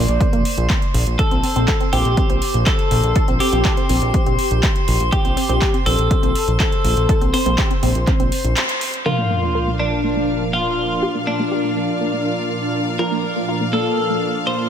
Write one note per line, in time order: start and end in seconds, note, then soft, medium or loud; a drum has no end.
0.00 9.07 C5 medium
0.00 1.09 D5 medium
0.00 9.07 C6 medium
0.08 0.19 A#1 medium
0.08 closed hi-hat soft
0.21 0.27 A#3 medium
0.21 kick loud
0.21 closed hi-hat medium
0.33 0.43 F1 medium
0.33 0.40 A#3 medium
0.33 closed hi-hat soft
0.45 open hi-hat loud
0.58 0.68 A#1 medium
0.58 closed hi-hat soft
0.70 kick loud
0.70 clap loud
0.70 closed hi-hat medium
0.82 closed hi-hat soft
0.94 1.05 A#1 loud
0.94 open hi-hat loud
1.07 1.17 A#1 medium
1.07 closed hi-hat soft
1.19 1.26 A4 loud
1.19 1.83 A4 loud
1.19 kick loud
1.19 closed hi-hat medium
1.31 1.42 A#1 medium
1.31 1.38 C4 medium
1.31 closed hi-hat soft
1.44 1.50 C4 medium
1.44 open hi-hat loud
1.56 1.66 A#1 medium
1.56 1.63 C4 medium
1.56 closed hi-hat soft
1.68 1.75 A4 medium
1.68 kick loud
1.68 clap loud
1.68 closed hi-hat medium
1.80 1.87 C4 medium
1.80 closed hi-hat soft
1.93 2.03 A#1 loud
1.93 2.00 C4 medium
1.93 2.57 G4 medium
1.93 open hi-hat loud
2.05 2.16 A#1 medium
2.05 closed hi-hat soft
2.17 2.24 C4 medium
2.17 kick loud
2.17 closed hi-hat medium
2.30 2.40 A#1 medium
2.30 2.36 C4 medium
2.30 closed hi-hat soft
2.42 open hi-hat loud
2.54 2.65 A#1 medium
2.54 closed hi-hat soft
2.66 3.30 A4 medium
2.66 kick loud
2.66 clap loud
2.66 closed hi-hat medium
2.79 closed hi-hat soft
2.91 3.02 A#1 loud
2.91 open hi-hat loud
3.03 3.14 A#1 medium
3.03 closed hi-hat soft
3.16 3.23 A4 loud
3.16 kick loud
3.16 closed hi-hat medium
3.28 3.38 A#1 medium
3.28 3.35 C4 medium
3.28 closed hi-hat soft
3.40 3.47 C4 medium
3.40 5.03 G4 medium
3.40 open hi-hat loud
3.53 3.63 A#1 medium
3.53 3.59 C4 medium
3.53 closed hi-hat soft
3.65 3.72 A4 medium
3.65 kick loud
3.65 clap loud
3.65 closed hi-hat medium
3.77 3.84 C4 medium
3.77 closed hi-hat soft
3.89 4.00 A#1 loud
3.89 3.96 C4 medium
3.89 open hi-hat loud
4.02 4.12 A#1 medium
4.02 closed hi-hat soft
4.14 4.21 C4 medium
4.14 kick loud
4.14 closed hi-hat medium
4.26 4.37 A#1 medium
4.26 4.33 C4 medium
4.26 closed hi-hat soft
4.39 open hi-hat loud
4.51 4.61 A#1 medium
4.51 closed hi-hat soft
4.63 kick loud
4.63 clap loud
4.63 closed hi-hat medium
4.76 closed hi-hat soft
4.88 4.98 A#1 loud
4.88 open hi-hat loud
5.00 5.11 A#1 medium
5.00 closed hi-hat soft
5.12 5.19 G4 loud
5.12 5.76 G4 loud
5.12 kick loud
5.12 closed hi-hat medium
5.25 5.35 A#1 medium
5.25 5.32 C4 medium
5.25 closed hi-hat soft
5.37 5.44 C4 medium
5.37 open hi-hat medium
5.49 5.60 A#1 medium
5.49 5.56 C4 medium
5.49 closed hi-hat soft
5.62 5.68 G4 medium
5.62 kick loud
5.62 clap loud
5.62 closed hi-hat medium
5.74 5.81 C4 medium
5.74 closed hi-hat soft
5.86 5.97 A#1 loud
5.86 5.93 C4 medium
5.86 6.50 A4 loud
5.86 open hi-hat loud
5.99 6.09 A#1 medium
5.99 closed hi-hat soft
6.11 6.18 C4 medium
6.11 kick loud
6.11 closed hi-hat medium
6.23 6.33 A#1 medium
6.23 6.30 C4 medium
6.23 closed hi-hat soft
6.35 open hi-hat medium
6.48 6.58 A#1 medium
6.48 closed hi-hat soft
6.60 7.24 A4 medium
6.60 kick loud
6.60 clap loud
6.60 closed hi-hat medium
6.72 closed hi-hat soft
6.84 6.95 A#1 medium
6.84 open hi-hat loud
6.97 7.07 A#1 medium
6.97 closed hi-hat soft
7.09 7.16 A4 loud
7.09 kick loud
7.09 closed hi-hat medium
7.21 7.32 A#1 medium
7.21 7.28 C4 medium
7.21 closed hi-hat soft
7.34 7.41 C4 medium
7.34 8.96 C5 medium
7.34 open hi-hat loud
7.46 7.56 A#1 medium
7.46 7.53 C4 medium
7.46 closed hi-hat soft
7.58 7.65 G4 medium
7.58 kick loud
7.58 clap loud
7.58 closed hi-hat medium
7.71 7.77 C4 medium
7.71 closed hi-hat soft
7.83 7.93 A#1 loud
7.83 7.90 C4 medium
7.83 open hi-hat loud
7.95 8.06 A#1 medium
7.95 closed hi-hat soft
8.07 8.14 C4 medium
8.07 kick loud
8.07 clap soft
8.07 closed hi-hat medium
8.20 8.30 A#1 medium
8.20 8.27 C4 medium
8.20 closed hi-hat soft
8.32 open hi-hat loud
8.44 8.55 A#1 medium
8.44 closed hi-hat soft
8.57 clap loud
8.57 closed hi-hat medium
8.69 closed hi-hat soft
8.81 open hi-hat loud
8.94 closed hi-hat soft
9.06 12.96 A#2 medium
9.06 14.69 A#2 medium
9.06 12.96 F3 medium
9.06 14.69 A#3 medium
9.06 12.96 D4 medium
9.06 9.70 F4 medium
9.06 14.69 F4 medium
9.06 12.96 A#4 medium
9.06 9.13 A#4 medium
9.06 14.69 D5 medium
9.06 14.69 F5 medium
9.06 14.69 F6 medium
9.06 sub drop medium
9.18 9.25 A#3 medium
9.30 9.37 A#3 medium
9.43 9.50 A#3 medium
9.55 9.62 A#4 medium
9.67 9.74 A#3 medium
9.80 9.86 A#3 medium
9.80 10.44 D4 medium
10.04 10.11 A#3 medium
10.17 10.23 A#3 medium
10.53 11.17 F4 medium
11.03 11.09 G4 medium
11.15 11.22 A#3 medium
11.27 11.34 A#3 medium
11.27 12.89 D4 medium
11.39 11.46 A#3 medium
11.52 11.59 G4 medium
11.64 11.71 A#3 medium
11.76 11.83 A#3 medium
12.01 12.08 A#3 medium
12.13 12.20 A#3 medium
12.99 14.69 A#2 medium
12.99 14.69 F3 medium
12.99 14.69 A#3 medium
12.99 14.69 D4 medium
12.99 13.06 F4 loud
12.99 13.63 A#4 medium
13.12 13.18 A#3 medium
13.24 13.31 A#3 medium
13.36 13.43 A#3 medium
13.48 13.55 F4 medium
13.61 13.68 A#3 medium
13.73 13.80 A#3 medium
13.73 14.37 A4 medium
13.98 14.05 A#3 medium
14.10 14.17 A#3 medium
14.47 14.69 C5 medium